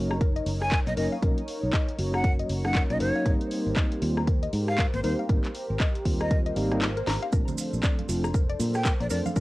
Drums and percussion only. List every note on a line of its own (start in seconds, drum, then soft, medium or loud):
0.11 cross-stick medium
0.21 kick loud
0.21 closed hi-hat medium
0.36 closed hi-hat medium
0.46 open hi-hat loud
0.61 cross-stick medium
0.72 kick loud
0.72 clap loud
0.72 closed hi-hat medium
0.87 closed hi-hat medium
0.97 open hi-hat loud
1.22 kick loud
1.22 closed hi-hat medium
1.38 closed hi-hat medium
1.48 open hi-hat loud
1.73 kick loud
1.73 clap loud
1.73 closed hi-hat medium
1.89 closed hi-hat medium
1.99 open hi-hat loud
2.14 cross-stick medium
2.24 kick loud
2.24 closed hi-hat medium
2.39 closed hi-hat medium
2.50 open hi-hat loud
2.65 cross-stick medium
2.75 kick loud
2.75 clap loud
2.75 closed hi-hat medium
2.90 closed hi-hat medium
3.00 open hi-hat loud
3.26 kick loud
3.26 closed hi-hat medium
3.41 closed hi-hat medium
3.51 open hi-hat loud
3.77 kick loud
3.77 clap loud
3.77 closed hi-hat medium
3.92 closed hi-hat medium
4.02 open hi-hat loud
4.17 cross-stick medium
4.27 kick loud
4.27 closed hi-hat medium
4.43 closed hi-hat medium
4.53 open hi-hat loud
4.68 cross-stick medium
4.78 kick loud
4.78 clap loud
4.78 closed hi-hat medium
4.94 closed hi-hat medium
5.04 open hi-hat loud
5.29 kick loud
5.29 closed hi-hat medium
5.45 clap soft
5.45 closed hi-hat medium
5.55 open hi-hat loud
5.80 kick loud
5.80 clap loud
5.80 closed hi-hat medium
5.95 closed hi-hat medium
6.05 kick medium
6.05 open hi-hat loud
6.21 cross-stick medium
6.21 closed hi-hat soft
6.31 kick loud
6.31 closed hi-hat medium
6.46 closed hi-hat medium
6.56 open hi-hat loud
6.72 cross-stick medium
6.72 closed hi-hat soft
6.82 clap loud
6.82 closed hi-hat medium
6.97 closed hi-hat medium
7.07 snare medium
7.07 open hi-hat loud
7.22 closed hi-hat soft
7.32 kick loud
7.32 closed hi-hat medium
7.32 maracas medium
7.48 closed hi-hat medium
7.48 low conga loud
7.48 maracas soft
7.58 open hi-hat loud
7.58 maracas loud
7.73 maracas soft
7.83 kick loud
7.83 clap loud
7.83 closed hi-hat medium
7.83 maracas soft
7.99 closed hi-hat medium
7.99 high conga medium
8.09 open hi-hat loud
8.09 maracas medium
8.24 cross-stick medium
8.24 maracas soft
8.34 kick loud
8.34 closed hi-hat medium
8.34 maracas soft
8.50 closed hi-hat medium
8.60 open hi-hat loud
8.60 high conga medium
8.60 maracas medium
8.74 cross-stick medium
8.74 maracas soft
8.85 kick loud
8.85 clap loud
8.85 closed hi-hat medium
8.85 maracas medium
9.00 closed hi-hat medium
9.10 open hi-hat loud
9.10 maracas loud
9.26 high conga medium
9.26 maracas soft
9.36 kick loud
9.36 closed hi-hat medium
9.36 maracas medium